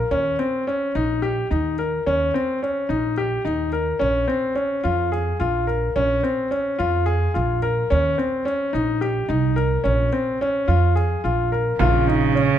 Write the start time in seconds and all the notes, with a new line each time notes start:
0.11 D#2 C#4
0.39 C4
0.67 C#4
0.95 A#1 D#4
1.22 G4
1.51 D#2 D#4
1.79 A#4
2.07 D#2 C#4
2.34 C4
2.63 C#4
2.89 A#1 D#4
3.18 G4
3.45 D#2 D#4
3.73 A#4
3.99 A#1 C#4
4.28 C4
4.55 C#4
4.84 F2 F4
5.12 G#4
5.40 A#1 F4
5.67 A#4
5.96 A#1 C#4
6.23 C4
6.51 C#4
6.79 F2 F4
7.06 G#4
7.34 A#1 F4
7.62 A#4
7.90 D#2 C#4
8.18 C4
8.45 C#4
8.73 A#1 D#4
9.01 G4
9.28 C2 D#4
9.56 A#4
9.84 A#1 C#4
10.13 C4
10.41 C#4
10.68 F2 F4
10.96 G#4
11.24 A#1 F4
11.52 A#4
11.79 A#1 C#3 F4, frame drum
12.07 D#4
12.35 C#4